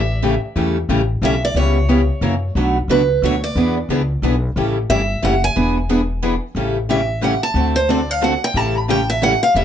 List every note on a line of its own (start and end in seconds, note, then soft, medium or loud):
0.00 0.36 A1 medium
0.00 0.40 E5 medium
0.22 0.34 C#3 medium
0.22 0.33 E3 medium
0.22 0.33 G3 loud
0.22 0.34 A3 loud
0.22 0.34 C#4 loud
0.22 0.34 E4 loud
0.22 0.34 G4 loud
0.22 0.34 A4 loud
0.56 0.83 E2 medium
0.56 0.76 C#3 medium
0.56 0.77 E3 medium
0.56 0.77 G3 medium
0.56 0.76 A3 medium
0.56 0.77 C#4 medium
0.56 0.77 E4 medium
0.56 0.77 G4 medium
0.56 0.77 A4 medium
0.89 1.17 A1 medium
0.89 1.00 C#3 medium
0.89 1.00 E3 loud
0.89 1.00 G3 medium
0.89 1.00 A3 medium
0.89 1.00 C#4 medium
0.89 1.01 E4 loud
0.89 1.01 G4 loud
0.89 1.01 A4 loud
1.22 1.50 B1 medium
1.22 1.33 C#3 medium
1.22 1.34 E3 medium
1.22 1.34 G3 medium
1.22 1.34 A3 medium
1.22 1.34 C#4 medium
1.22 1.34 E4 loud
1.22 1.34 G4 medium
1.22 1.34 A4 loud
1.22 1.43 E5 medium
1.45 1.57 D5 medium
1.55 2.09 C#2 medium
1.55 1.76 C#3 medium
1.55 1.76 E3 medium
1.55 1.77 G3 medium
1.55 1.77 B3 medium
1.55 1.77 C#4 medium
1.55 1.77 E4 medium
1.55 1.77 G4 medium
1.55 1.77 B4 medium
1.55 2.53 C#5 medium
1.89 2.00 C#3 medium
1.89 2.00 E3 medium
1.89 2.00 G3 medium
1.89 2.00 B3 medium
1.89 2.00 C#4 medium
1.89 2.00 E4 loud
1.89 2.00 G4 loud
1.89 2.00 B4 loud
2.21 2.49 F#2 medium
2.21 2.33 C#3 loud
2.21 2.34 E3 loud
2.21 2.33 F#3 medium
2.21 2.33 A#3 medium
2.21 2.34 C#4 loud
2.21 2.33 E4 medium
2.21 2.34 F#4 loud
2.21 2.34 A#4 loud
2.55 2.82 B1 medium
2.55 2.77 B2 medium
2.55 2.77 F#3 medium
2.55 2.77 A3 medium
2.55 2.77 D4 medium
2.55 2.77 F#4 medium
2.55 2.77 B4 medium
2.88 3.17 C#2 medium
2.88 3.00 B2 medium
2.88 3.00 F#3 medium
2.88 3.01 A3 medium
2.88 3.00 D4 medium
2.88 3.01 F#4 loud
2.88 3.01 B4 loud
2.88 3.21 B4 medium
3.22 3.51 D2 medium
3.22 3.34 B2 medium
3.22 3.34 F#3 loud
3.22 3.34 A3 loud
3.22 3.34 D4 loud
3.22 3.34 F#4 loud
3.22 3.34 B4 medium
3.22 3.43 C#5 medium
3.44 3.74 D5 medium
3.56 3.82 E2 medium
3.56 3.77 E3 medium
3.56 3.77 B3 medium
3.56 3.77 D4 medium
3.56 3.77 G#4 medium
3.56 3.77 B4 medium
3.89 4.17 C#2 medium
3.89 4.01 E3 medium
3.89 4.01 B3 medium
3.89 4.01 D4 loud
3.89 4.01 G#4 loud
3.89 4.01 B4 loud
4.22 4.51 B1 medium
4.22 4.34 E3 loud
4.22 4.34 B3 loud
4.22 4.34 D4 medium
4.22 4.34 G#4 loud
4.22 4.34 B4 loud
4.56 4.83 A1 medium
4.56 4.77 C#3 medium
4.56 4.77 E3 medium
4.56 4.77 G3 medium
4.56 4.77 A3 medium
4.56 4.77 C#4 medium
4.56 4.77 E4 medium
4.56 4.77 G4 medium
4.56 4.77 A4 medium
4.89 5.18 G1 medium
4.89 5.00 C#3 medium
4.89 5.01 E3 medium
4.89 5.01 G3 medium
4.89 5.00 A3 medium
4.89 5.01 C#4 loud
4.89 5.01 E4 medium
4.89 5.01 G4 loud
4.89 5.01 A4 loud
4.89 5.21 E5 medium
5.22 5.51 F#1 medium
5.22 5.33 C#3 medium
5.22 5.34 E3 loud
5.22 5.33 G3 loud
5.22 5.34 A3 loud
5.22 5.34 C#4 loud
5.22 5.34 E4 loud
5.22 5.34 G4 loud
5.22 5.34 A4 loud
5.22 5.43 F#5 medium
5.44 5.74 G#5 loud
5.56 6.36 E1 medium
5.56 5.76 E3 medium
5.56 5.76 B3 medium
5.56 5.77 D4 medium
5.56 5.77 G#4 medium
5.56 5.77 B4 medium
5.89 6.00 E3 medium
5.89 6.00 B3 medium
5.89 6.00 D4 loud
5.89 6.00 G#4 loud
5.89 6.01 B4 loud
6.22 6.33 E3 medium
6.22 6.33 B3 loud
6.22 6.34 D4 loud
6.22 6.34 G#4 loud
6.22 6.34 B4 loud
6.55 7.35 A1 medium
6.55 6.76 C#3 medium
6.55 6.76 E3 medium
6.55 6.76 G3 medium
6.55 6.76 A3 medium
6.55 6.77 C#4 medium
6.55 6.77 E4 medium
6.55 6.77 G4 medium
6.55 6.77 A4 medium
6.89 7.00 C#3 medium
6.89 7.00 E3 medium
6.89 7.00 G3 loud
6.89 7.00 A3 medium
6.89 7.00 C#4 medium
6.89 7.00 E4 loud
6.89 7.00 G4 medium
6.89 7.00 A4 medium
6.89 7.21 E5 medium
7.21 7.33 C#3 loud
7.21 7.33 E3 loud
7.21 7.33 G3 medium
7.21 7.33 A3 medium
7.21 7.33 C#4 loud
7.21 7.33 E4 loud
7.21 7.33 G4 medium
7.21 7.34 A4 loud
7.21 7.43 F#5 medium
7.43 7.74 A5 loud
7.54 8.34 D2 medium
7.54 7.76 D3 medium
7.54 7.76 A3 medium
7.54 7.76 C4 medium
7.54 7.76 F#4 medium
7.54 7.76 A4 medium
7.76 7.88 C5 medium
7.89 8.00 D3 loud
7.89 8.00 A3 medium
7.89 8.00 C4 loud
7.89 8.00 F#4 loud
7.89 8.00 A4 loud
7.89 8.11 D5 medium
8.11 8.23 F5 loud
8.22 8.33 D3 medium
8.22 8.33 A3 medium
8.22 8.33 C4 medium
8.22 8.33 F#4 loud
8.22 8.33 A4 medium
8.22 8.42 F#5 medium
8.44 8.57 G5 loud
8.54 9.34 A1 medium
8.54 8.76 C#3 medium
8.54 8.76 E3 medium
8.54 8.76 G3 medium
8.54 8.76 A3 medium
8.54 8.76 C#4 medium
8.54 8.76 E4 medium
8.54 8.76 G4 medium
8.54 8.76 A4 medium
8.54 8.78 A5 medium
8.78 8.89 B5 loud
8.88 8.99 C#3 loud
8.88 9.00 E3 medium
8.88 9.00 G3 loud
8.88 9.00 A3 loud
8.88 9.00 C#4 loud
8.88 9.00 E4 medium
8.88 9.00 G4 loud
8.88 9.00 A4 loud
8.88 9.09 G5 medium
9.10 9.22 E5 loud
9.21 9.32 C#3 medium
9.21 9.33 E3 medium
9.21 9.33 G3 loud
9.21 9.33 A3 loud
9.21 9.33 C#4 medium
9.21 9.33 E4 loud
9.21 9.33 G4 loud
9.21 9.33 A4 loud
9.21 9.42 F#5 medium
9.43 9.55 F5 loud
9.55 9.65 E1 medium
9.55 9.65 C#3 medium
9.55 9.65 E3 medium
9.55 9.65 G3 medium
9.55 9.65 A3 medium
9.55 9.65 C#4 medium
9.55 9.65 E4 medium
9.55 9.65 G4 medium
9.55 9.65 A4 medium
9.55 9.65 E5 medium